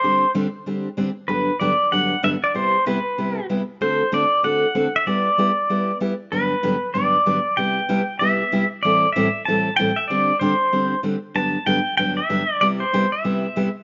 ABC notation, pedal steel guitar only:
X:1
M:4/4
L:1/8
Q:"Swing" 1/4=191
K:G
V:1 name="Pedal steel guitar"
c2 z6 | B2 d2 f2 e d | c2 B4 z2 | c2 d2 f3 e |
d6 z2 | B4 d4 | g4 e3 z | d2 e2 a2 g e |
d2 c4 z2 | a2 g2 g e3 | d c2 e4 z |]